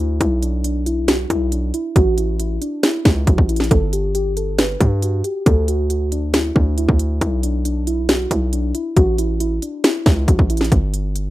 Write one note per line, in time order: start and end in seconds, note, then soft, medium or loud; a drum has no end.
0.00 0.19 D2 loud
0.00 0.18 E4 medium
0.21 1.26 B1 loud
0.21 0.40 E4 medium
0.21 kick loud
0.21 closed hi-hat medium
0.43 0.62 D4 medium
0.43 closed hi-hat medium
0.64 0.84 D4 medium
0.64 closed hi-hat medium
0.86 1.05 E4 medium
0.86 closed hi-hat medium
1.08 1.27 F#4 medium
1.08 snare loud
1.08 closed hi-hat medium
1.30 1.72 B1 loud
1.30 1.49 E4 medium
1.30 kick medium
1.30 closed hi-hat medium
1.52 1.71 D4 medium
1.52 closed hi-hat medium
1.74 1.93 E4 medium
1.74 closed hi-hat medium
1.96 2.59 A1 loud
1.96 2.15 F#4 loud
1.96 kick loud
1.96 closed hi-hat medium
2.18 2.37 E4 medium
2.18 closed hi-hat medium
2.40 2.59 E4 medium
2.40 closed hi-hat medium
2.61 2.81 D4 medium
2.61 closed hi-hat medium
2.83 3.14 E4 medium
2.83 snare loud
2.83 closed hi-hat medium
3.05 3.26 C#2 loud
3.05 kick medium
3.05 snare loud
3.16 3.26 E4 medium
3.27 3.38 A1 loud
3.27 3.46 F#4 medium
3.27 kick medium
3.27 closed hi-hat medium
3.38 3.70 A1 loud
3.38 kick medium
3.49 3.68 E4 medium
3.49 closed hi-hat medium
3.49 open hi-hat medium
3.56 snare medium
3.56 closed hi-hat medium
3.64 closed hi-hat medium
3.71 4.77 G1 loud
3.71 3.90 A4 loud
3.71 kick loud
3.71 closed hi-hat medium
3.93 4.12 G4 medium
3.93 closed hi-hat medium
4.15 4.34 G4 medium
4.15 closed hi-hat medium
4.37 4.56 A4 medium
4.37 closed hi-hat medium
4.58 4.78 B4 medium
4.58 snare loud
4.58 closed hi-hat medium
4.81 5.23 G2 loud
4.81 5.00 G4 medium
4.81 kick medium
4.81 closed hi-hat medium
5.02 5.22 F#4 medium
5.02 closed hi-hat medium
5.24 5.43 G4 medium
5.24 closed hi-hat medium
5.46 6.52 D2 loud
5.46 5.65 A4 loud
5.46 kick loud
5.46 closed hi-hat medium
5.68 5.87 F#4 medium
5.68 closed hi-hat medium
5.90 6.09 F#4 medium
5.90 closed hi-hat medium
6.12 6.31 D4 medium
6.12 closed hi-hat medium
6.34 6.53 E4 medium
6.34 snare loud
6.34 closed hi-hat medium
6.56 6.87 D2 loud
6.56 6.75 D4 medium
6.56 kick medium
6.77 7.19 E4 medium
6.77 closed hi-hat medium
6.89 7.20 D2 loud
6.89 kick medium
6.99 closed hi-hat medium
7.21 8.27 B1 loud
7.21 7.41 E4 loud
7.21 kick loud
7.21 closed hi-hat medium
7.43 7.62 D4 medium
7.43 closed hi-hat medium
7.65 7.84 D4 medium
7.65 closed hi-hat medium
7.87 8.06 E4 medium
7.87 closed hi-hat medium
8.09 8.28 F#4 medium
8.09 snare loud
8.09 closed hi-hat medium
8.31 8.73 B1 loud
8.31 8.50 E4 medium
8.31 kick medium
8.31 closed hi-hat medium
8.53 8.72 D4 medium
8.53 closed hi-hat medium
8.75 8.94 E4 medium
8.75 closed hi-hat medium
8.97 9.60 A1 loud
8.97 9.16 F#4 loud
8.97 kick loud
8.97 closed hi-hat medium
9.18 9.38 E4 medium
9.18 closed hi-hat medium
9.40 9.60 E4 medium
9.40 closed hi-hat medium
9.62 9.81 D4 medium
9.62 closed hi-hat medium
9.84 10.15 E4 medium
9.84 snare loud
9.84 closed hi-hat medium
10.06 10.27 C#2 loud
10.06 kick loud
10.06 snare loud
10.17 10.27 E4 medium
10.28 10.38 A1 loud
10.28 10.47 F#4 medium
10.28 kick medium
10.28 closed hi-hat medium
10.39 10.70 A1 loud
10.39 kick medium
10.50 10.69 E4 medium
10.50 closed hi-hat medium
10.50 open hi-hat medium
10.57 snare medium
10.57 closed hi-hat medium
10.64 closed hi-hat medium
10.72 11.30 G1 loud
10.72 kick loud
10.72 closed hi-hat medium
10.94 closed hi-hat medium
11.16 closed hi-hat medium